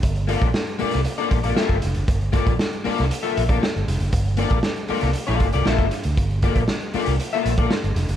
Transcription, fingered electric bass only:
X:1
M:4/4
L:1/16
Q:1/4=117
K:Gdor
V:1 name="Fingered electric bass" clef=bass
G,,,3 B,,, z3 C,, z2 B,,,2 z G,,, F,,, ^F,,, | G,,,3 B,,, z3 C,, z2 B,,,2 z G,,, F,,, ^F,,, | G,,,3 B,,, z3 C,, z B,,, G,,, C,, B,,, G,,, z D,, | G,,,3 B,,, z3 C,, z2 B,,,2 z G,,, F,,, ^F,,, |]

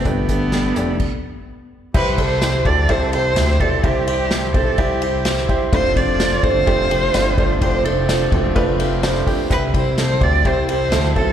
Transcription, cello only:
X:1
M:4/4
L:1/8
Q:1/4=127
K:C
V:1 name="Cello"
B,6 z2 | B c2 d c c2 A | G G2 A G3 z | c d2 c4- c |
c A3 z4 | B c c d c c2 A |]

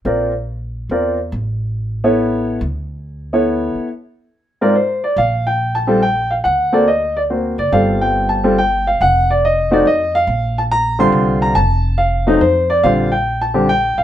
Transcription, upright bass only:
X:1
M:3/4
L:1/8
Q:"Swing" 1/4=141
K:Bb
V:1 name="Upright bass" clef=bass
B,,,4 =E,,2 | A,,,6 | D,,4- D,, z | z6 |
B,,,6 | D,,4- D,, ^F,,, | G,,,6 | F,,,4 F,,2 |
B,,,4 C,,2 | F,,,4 F,,2 | B,,,4- B,,, A,,, |]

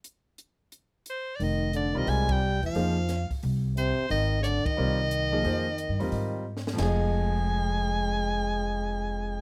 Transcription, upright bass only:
X:1
M:4/4
L:1/8
Q:"Swing" 1/4=178
K:Fdor
V:1 name="Upright bass" clef=bass
z8 | F,,,3 C,, C,,3 E,, | F,,3 z C,,3 z | A,,,3 z C,,4 |
F,,2- (3F,, G,, =E,, A,,4 | F,,,8- | F,,,8 |]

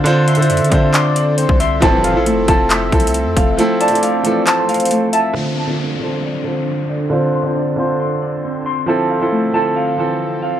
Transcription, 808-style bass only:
X:1
M:4/4
L:1/16
Q:1/4=136
K:Dm
V:1 name="808-style bass" clef=bass
D,4 F,, D, D,6- D, C,,3 | F,,,3 A,,,3/2 F,,,3/2 F,,,4 C,,3 F,, F,,,2 | z16 | z16 |
z16 | z16 |]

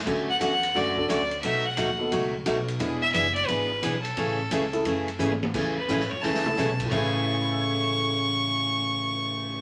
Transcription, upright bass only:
X:1
M:4/4
L:1/8
Q:"Swing" 1/4=175
K:A
V:1 name="Upright bass" clef=bass
D,,2 E,,2 F,,2 D,,2 | B,,,2 ^D,,2 C,,2 B,,,2 | E,,,2 F,,,2 G,,,2 B,,,2 | A,,,2 C,,2 F,,2 G,,2 |
E,,2 A,,, z C,,2 B,,,2 | A,,,8- | A,,,8 |]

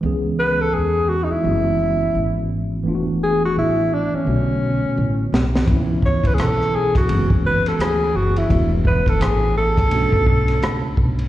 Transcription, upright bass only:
X:1
M:4/4
L:1/16
Q:"Swing 16ths" 1/4=85
K:F#m
V:1 name="Upright bass" clef=bass
C,,4 E,,3 z F,,,4 G,,,4 | E,,,4 A,,,3 z B,,,3 z A,,,2 B,,,2 | C,,4 B,,,3 z F,,,3 z D,,2 F,,,2 | E,,,4 A,,,4 B,,,4 C,,2 B,,,2 |]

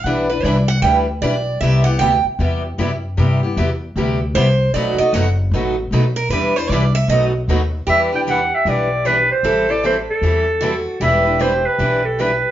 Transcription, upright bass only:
X:1
M:4/4
L:1/8
Q:"Swing" 1/4=153
K:Em
V:1 name="Upright bass" clef=bass
B,,,2 C,,2 D,,2 B,,,2 | C,,2 D,, z E,,2 F,,2 | G,,2 E,,2 D,,2 C,,2 | B,,, z F,,,2 A,,,2 B,,,2 |
E,,2 C,,2 B,,,2 ^D,,2 | E,,4 B,,,4 | A,,,4 E,,4 | E,,,4 B,,,4 |]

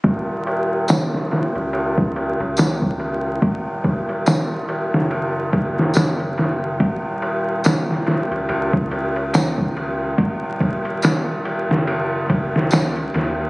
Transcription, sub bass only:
X:1
M:4/4
L:1/16
Q:"Swing 16ths" 1/4=71
K:Gb
V:1 name="Sub bass" clef=bass
E,,,6- E,,, D,,4 D,,4- D,, | E,,,6- E,,, G,,,3 G,,,6 | E,,,6- E,,, D,, D,,2 D,,6 | E,,,6- E,,, G,,,3 G,,,2 D,,2 E,,2 |]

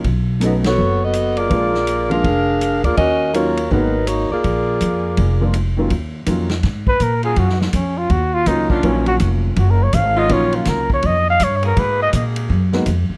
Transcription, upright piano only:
X:1
M:4/4
L:1/8
Q:"Swing" 1/4=164
K:Ebm
V:1 name="Upright piano"
z2 [^F,=A,=B,D^D] z4 z | [F,A,B,=DF] z2 [F,A,B,DF] z4 | z2 [E,G,B,DF] z [E,A,B,CG] z3 | z4 z [F,A,B,=DF] z [E,G,B,_DF] |
z2 [E,G,B,DF] z4 z | z6 [E,G,B,DF]2 | [E,G,B,DF]4- [E,G,B,DF] z3 | [E,G,B,DF]4- [E,G,B,DF] z3 |
z4 z [A,B,CEG] z2 |]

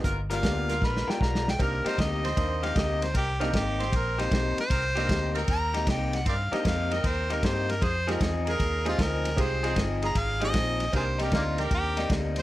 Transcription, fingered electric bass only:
X:1
M:4/4
L:1/8
Q:"Swing" 1/4=154
K:Cm
V:1 name="Fingered electric bass" clef=bass
G,,,2 D,,2 ^A,,, z =B,,,2 | C,, z D,,2 E,,2 D,,2 | C,,2 A,,,2 B,,,2 =B,,, z | C,,2 D,,2 E,,2 C,,2 |
G,, z F,,2 E,,2 G,,2 | F,,2 =E,,2 _E,,2 D,,2 | C,,2 G,,,2 A,,,2 B,,,2 | C,,2 D,,2 E,,2 D,,2 |]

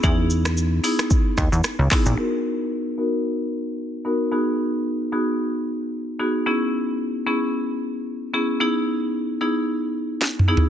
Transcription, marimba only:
X:1
M:4/4
L:1/8
Q:"Swing 16ths" 1/4=112
K:B
V:1 name="Marimba"
[B,DEG]2 z [B,DEG] z3 [B,DEG] | [B,DFA]2 z [B,DFA] z3 [B,DFA] | [B,DFG]2 z [B,DFG] z3 [B,DFG] | [B,CEG]2 z [B,CEG] z3 [B,CEG] |
[B,DEG]2 z [B,DEG] z3 [B,DEG] |]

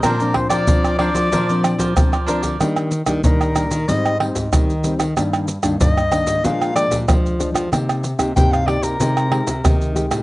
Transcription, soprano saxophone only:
X:1
M:4/4
L:1/16
Q:1/4=94
K:Eb
V:1 name="Soprano saxophone"
B2 c d3 d6 z4 | z4 B4 e2 c2 z4 | z4 e4 f2 d2 z4 | z4 g f d B6 z3 |]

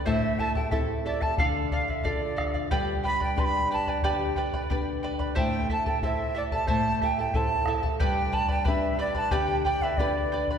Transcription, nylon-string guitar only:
X:1
M:2/4
L:1/8
Q:1/4=91
K:Gmix
V:1 name="Nylon-string guitar"
A,,2 [CEA]2 | D,2 [DFA]2 | G,,2 [DGB]2 | D,2 [DGB]2 |
A,,2 [EAc]2 | A,,2 [EAc]2 | G,,2 [DGB]2 | D,2 [DGB]2 |]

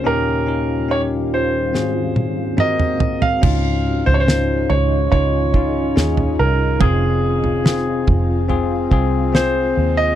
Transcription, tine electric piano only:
X:1
M:4/4
L:1/8
Q:1/4=71
K:Ebmix
V:1 name="Tine electric piano"
[DEG] [DEB] [DEG]2 [C_GA]2 [CGB]2 | [K:Dblyd] [DEF]2 [DEF]2 [DEF] [DEF] [DEA]2 | [CFA]2 [CFA]2 [CFA] [CFA] [CFA]2 |]
V:2 name="Tine electric piano" clef=bass
[E,,B,,]4 [A,,E,]4 | [K:Dblyd] A,,3 z4 z | C,3 z4 z |]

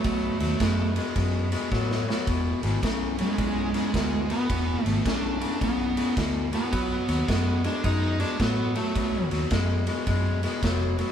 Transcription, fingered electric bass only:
X:1
M:4/4
L:1/8
Q:"Swing" 1/4=108
K:E
V:1 name="Fingered electric bass" clef=bass
B,,, D,, F,,2 F,,2 A,,2 | E,,, G,,, B,,,2 B,,,2 =D,,2 | E,,, G,,, z2 B,,,2 =D,,2 | B,,, D,, F,,2 F,,2 A,,2 |
B,,, D,, F,,2 F,,2 ^E,,,2 |]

